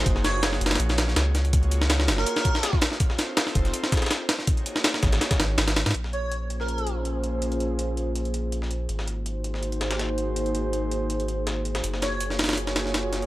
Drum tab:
HH |x---x---x---xxxxx-x-x---x---x-x-|x-x-x---x---x---x-x-x---x---x---|x---x---x---x-x-x-x-xxxxx---x---|x-x-x---x---x-x-x-x-x---x-x-x-xx|
SD |--o-o---o-o--ooo--o-o-o-o---o---|------o-o-o-o-o---o---o-o-o-o-o-|--o-o---o-o---o---o-ooooo---o-o-|------o-o-o-o-o-o-o-o---o-o-o-oo|
BD |o-------------------------------|o-------------------o-----o-----|o-----------o-------o-----------|o-----------o-----o-------------|

HH |x---x---x---x---x-x-x---x---x---|x-x-x---x---x---x-x-x---x---x---|x---x---x---x---x-x-x-x-x---x---|x-x-x---x---x---x-x-x---x---x-x-|
SD |--o-----------o-----------------|--------------------------o-----|--o-----------o-----o-o-o-------|------------------------o-----o-|
BD |--------------------------------|--------------------------------|--------------------------------|--------------------------------|

HH |x---x---x---xxxxx-x-x---x---x-x-|
SD |--o-o-----o-oooo--o-o-o-o---o---|
BD |--------------------------------|